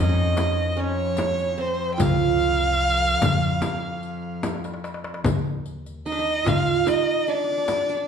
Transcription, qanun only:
0.03 0.76 C#4 medium
0.09 1.54 D#4 medium
0.77 1.64 C#4 medium
1.58 3.18 C4 medium
1.98 4.39 F4 medium
6.06 6.18 D#4 medium
6.12 6.25 D4 medium
6.19 6.86 D#4 medium
6.45 7.79 F4 medium
6.86 7.34 D#4 medium
7.28 7.34 D4 medium
7.34 7.44 D4 soft
7.44 7.52 D4 medium
7.52 7.57 D4 soft
7.58 7.65 D4 medium
7.66 7.72 D4 soft
7.73 7.80 D4 medium
7.81 7.89 D4 soft
7.89 7.96 D4 medium
7.97 8.08 D4 medium

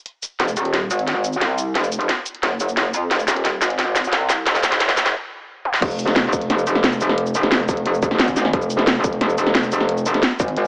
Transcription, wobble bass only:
0.40 0.55 F1 medium
0.57 0.89 D#1 loud
0.91 1.40 G#1 loud
1.41 1.74 C2 loud
1.75 2.08 F1 medium
2.43 2.93 F#1 loud
2.94 3.10 F2 loud
3.11 3.27 F1 loud
3.28 3.60 D#1 loud
3.62 4.11 G#1 loud
4.13 4.45 C2 loud
4.47 4.79 F1 medium
4.81 5.14 F#1 loud
5.82 6.66 F1 medium
6.67 7.50 F1 loud
7.52 8.01 F1 loud
8.03 8.18 F1 loud
8.19 8.52 G#1 loud
8.53 9.37 F1 medium
9.38 10.21 F1 loud
10.40 10.67 G#1 loud

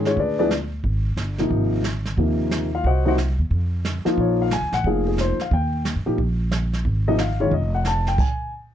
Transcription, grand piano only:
0.00 0.15 D#3 medium
0.00 0.15 G#3 medium
0.06 0.18 C#4 medium
0.06 0.18 F4 medium
0.06 0.18 G#4 medium
0.06 0.18 C#5 medium
0.20 0.38 D4 soft
0.20 0.39 G#4 soft
0.20 0.39 B4 soft
0.20 0.38 D5 medium
0.39 0.50 F3 medium
0.39 0.50 G#3 medium
0.39 0.50 B3 medium
0.39 0.51 D4 medium
0.39 0.50 E4 medium
0.39 0.51 G#4 medium
0.39 0.51 B4 medium
0.39 0.51 D5 medium
1.39 1.82 C3 soft
1.39 1.82 F3 soft
1.39 1.82 A#3 soft
1.39 1.82 D#4 medium
2.18 2.68 C3 soft
2.18 2.68 F3 soft
2.18 2.68 A#3 soft
2.18 2.69 D#4 soft
2.75 2.85 F4 medium
2.75 2.85 F5 medium
2.86 3.06 F#4 medium
2.86 3.06 C5 medium
2.86 3.06 D#5 medium
2.86 3.06 F#5 medium
3.05 3.16 C3 medium
3.05 3.16 F3 medium
3.05 3.16 A#3 medium
3.05 3.16 D#4 medium
3.05 3.15 F#4 medium
3.05 3.15 C5 medium
3.05 3.15 D#5 medium
3.05 3.15 F#5 medium
4.05 4.48 F3 medium
4.05 4.49 A#3 medium
4.05 4.49 D#4 medium
4.05 4.49 F4 medium
4.21 4.40 C#5 medium
4.42 4.52 F5 medium
4.53 4.73 G#5 medium
4.74 4.85 F#5 medium
4.86 5.36 F3 soft
4.86 5.36 A#3 soft
4.86 5.36 D#4 soft
4.86 5.07 G#4 medium
4.86 5.07 F5 medium
5.08 5.19 G#4 medium
5.21 5.40 C5 medium
5.42 5.52 F5 medium
5.53 5.84 G5 medium
6.06 6.17 F3 soft
6.06 6.17 A#3 soft
6.06 6.17 D#4 soft
6.06 6.17 G4 medium
7.08 7.18 C3 medium
7.08 7.18 F3 medium
7.08 7.18 A#3 soft
7.08 7.18 D#4 medium
7.08 7.19 D#5 medium
7.21 7.40 F5 medium
7.40 7.51 D#3 medium
7.40 7.51 G#3 medium
7.40 7.51 C#4 medium
7.40 7.51 F4 medium
7.40 7.52 C#5 medium
7.54 7.74 D#5 medium
7.75 7.86 F#5 medium
7.87 8.07 A5 medium
8.08 8.19 G5 medium
8.20 8.51 G#5 medium

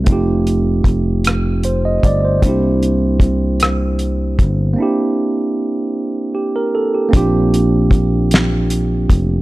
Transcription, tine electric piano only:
0.04 2.37 A3 medium
0.04 2.38 C4 medium
0.09 2.39 D#4 medium
0.09 2.40 F4 medium
0.13 2.41 G4 medium
1.65 1.83 C5 medium
1.85 2.03 D#5 medium
2.05 2.23 D5 medium
2.25 2.61 C5 soft
2.40 4.72 A#3 medium
2.40 4.74 C4 medium
2.44 4.75 D4 medium
2.44 4.76 E4 medium
2.49 4.77 G4 medium
4.74 7.07 A#3 medium
4.74 7.08 C4 medium
4.78 7.09 D4 medium
4.78 7.10 E4 medium
4.83 6.33 G4 medium
6.35 6.53 G4 medium
6.56 6.74 A#4 medium
6.75 6.93 A4 medium
6.94 7.16 G4 medium
7.09 9.42 A#3 medium
7.09 9.42 C4 medium
7.13 9.42 D4 medium
7.13 9.42 F4 medium
7.13 9.42 G4 medium

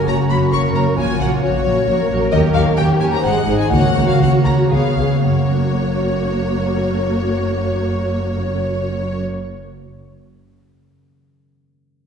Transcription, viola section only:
0.06 0.28 A#3 soft
0.06 0.28 F#4 soft
0.29 0.51 A#3 soft
0.29 0.51 F#4 soft
0.52 0.73 A#3 soft
0.52 0.74 F#4 soft
0.75 0.96 A#3 soft
0.75 0.96 F#4 soft
0.97 1.19 A#3 soft
0.97 1.19 F#4 soft
1.20 1.41 A#3 soft
1.20 1.41 F#4 soft
1.42 1.64 A#3 soft
1.42 1.64 F#4 soft
1.65 1.86 A#3 soft
1.65 1.86 F#4 soft
1.87 2.08 A#3 soft
1.87 2.08 F#4 soft
2.09 2.31 A#3 soft
2.09 2.31 F#4 soft
2.32 2.53 A#3 medium
2.32 2.53 G4 medium
2.54 2.76 A#3 soft
2.54 2.76 G4 soft
2.77 2.99 A#3 soft
2.77 2.99 G4 soft
3.00 3.23 A#3 soft
3.00 3.23 G4 soft
3.24 3.46 G#3 soft
3.24 3.46 G#4 soft
3.48 3.70 G#3 soft
3.48 3.70 G#4 soft
3.71 3.94 A#3 medium
3.71 3.94 F#4 soft
3.95 4.19 A#3 soft
3.95 4.19 F#4 soft
4.20 4.44 A#3 soft
4.20 4.44 F#4 soft
4.45 4.70 A#3 soft
4.45 4.70 F#4 soft
4.71 4.97 B3 soft
4.71 4.96 G#4 soft
4.98 5.24 B3 soft
4.98 5.24 G#4 soft
5.24 9.21 A#3 soft
5.24 9.21 F#4 soft

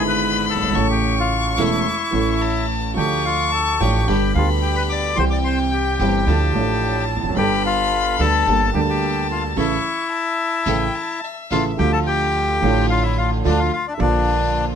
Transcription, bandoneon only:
0.07 0.45 B4 medium
0.07 0.46 B5 medium
0.49 0.87 A4 medium
0.49 0.88 A5 medium
0.90 1.15 G4 medium
0.90 1.19 G5 medium
1.18 1.56 F4 medium
1.18 1.61 F5 medium
1.59 2.65 E4 medium
1.59 2.66 E5 medium
2.97 3.24 G4 medium
2.97 3.26 G5 medium
3.25 3.51 F4 medium
3.25 3.51 F5 medium
3.52 3.79 A4 medium
3.52 3.81 A5 medium
3.80 4.07 G4 medium
3.80 4.05 G5 medium
4.06 4.34 G4 medium
4.06 4.33 G5 medium
4.35 4.49 F4 medium
4.35 4.47 F5 medium
4.62 4.76 G4 medium
4.62 4.75 G5 medium
4.76 4.83 B4 medium
4.76 4.82 B5 medium
4.89 5.17 D5 medium
4.89 5.18 D6 medium
5.16 5.25 C5 medium
5.16 5.23 C6 loud
5.30 5.39 D5 medium
5.30 5.37 D6 medium
5.44 5.59 C5 medium
5.44 5.57 C6 medium
5.71 7.05 G4 medium
5.71 7.04 G5 medium
7.38 7.63 G4 medium
7.38 7.63 G5 medium
7.66 8.16 F4 medium
7.66 8.21 F5 medium
8.20 8.70 A4 medium
8.20 8.71 A5 loud
8.74 8.80 G4 medium
8.74 8.81 G5 medium
8.90 9.27 G4 medium
8.90 9.27 G5 medium
9.31 9.43 F4 medium
9.31 9.44 F5 medium
9.58 11.20 E4 medium
9.58 11.21 E5 medium
11.51 11.65 F4 medium
11.51 11.64 F5 medium
11.79 11.92 G4 medium
11.79 11.92 G5 loud
11.93 12.00 A4 medium
11.93 11.99 A5 medium
12.07 12.87 G4 medium
12.07 12.86 G5 loud
12.90 13.04 F4 medium
12.90 13.03 F5 medium
13.03 13.17 E4 medium
13.03 13.18 E5 medium
13.17 13.31 F4 medium
13.17 13.30 F5 medium
13.46 13.60 D4 medium
13.46 13.59 D5 medium
13.58 13.72 F4 medium
13.58 13.71 F5 medium
13.73 13.87 F4 medium
13.73 13.86 F5 medium
13.87 13.94 D4 medium
13.87 13.93 D5 medium
13.94 14.00 E5 medium
14.00 14.65 D4 medium
14.00 14.65 D5 medium

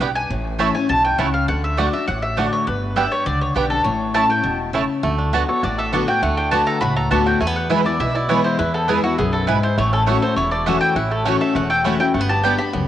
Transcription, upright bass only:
0.00 0.25 B1 medium
0.30 0.69 A1 medium
0.89 1.14 B1 medium
1.19 1.44 C#2 medium
1.48 1.87 D2 medium
2.08 2.46 A1 medium
2.67 3.06 G1 loud
3.26 3.51 C#2 medium
3.56 3.81 B1 medium
3.85 4.24 A1 medium
4.45 4.83 E1 medium
5.03 5.42 D2 medium
5.63 6.02 A1 medium
6.22 6.61 D2 loud
6.81 7.07 C#2 medium
7.11 7.36 D2 medium
7.41 7.79 E2 medium
8.00 8.39 B1 medium
8.59 8.98 E2 loud
9.18 9.57 B1 medium
9.78 10.16 A1 medium
10.36 10.75 E1 medium
10.96 11.35 A1 medium
11.55 11.94 E1 medium
12.14 12.53 G1 loud
12.74 12.88 C#2 medium

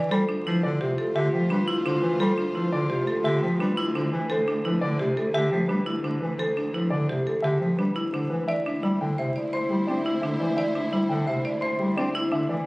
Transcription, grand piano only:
0.00 0.16 D5 medium
0.11 0.34 C5 medium
0.46 0.68 B4 medium
0.63 0.86 D5 medium
0.81 1.03 C5 medium
1.15 1.38 E5 medium
1.34 1.56 G4 medium
1.51 1.73 B4 medium
1.85 2.08 C5 medium
2.02 2.25 B4 medium
2.20 2.43 C5 loud
2.54 2.78 B4 medium
2.72 2.95 D5 loud
2.89 3.12 C5 medium
3.24 3.47 E5 loud
3.42 3.65 G4 medium
3.59 3.82 B4 medium
3.95 4.17 C5 medium
4.13 4.35 B4 medium
4.31 4.53 C5 medium
4.65 4.87 B4 medium
4.81 5.04 D5 medium
4.99 5.22 C5 medium
5.34 5.57 E5 medium
5.51 5.74 G4 medium
5.68 5.91 B4 medium
6.04 6.26 C5 medium
6.21 6.44 B4 medium
6.39 6.61 C5 medium
6.73 6.96 B4 medium
6.90 7.13 D5 medium
7.07 7.31 C5 medium
7.42 7.66 E5 medium
7.60 7.83 G4 medium
7.77 8.00 B4 medium
8.13 8.36 C5 medium
8.30 8.53 B4 medium
8.48 8.71 E5 medium
8.83 9.06 D5 medium
9.01 9.23 G5 medium
9.19 9.41 E5 medium
9.53 9.76 C6 medium
9.70 9.93 G4 medium
9.87 10.10 D5 medium
10.22 10.45 E5 medium
10.40 10.63 D5 medium
10.57 10.80 E5 medium
10.92 11.15 D5 medium
11.09 11.32 G5 medium
11.27 11.50 E5 medium
11.61 11.84 C6 medium
11.79 12.02 G4 medium
11.97 12.20 D5 medium
12.32 12.55 E5 medium
12.49 12.66 D5 medium

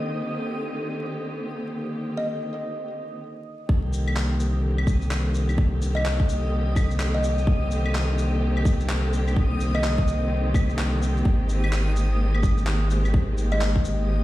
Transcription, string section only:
0.00 3.18 D3 medium
0.00 3.18 D#3 medium
0.00 3.18 A#3 medium
0.00 3.18 C4 medium
0.00 3.18 G4 medium
3.69 11.21 D3 medium
3.69 14.24 D#3 medium
3.69 14.24 A#3 medium
3.69 14.24 C4 medium
3.69 14.24 G4 medium
11.26 14.24 G#3 medium

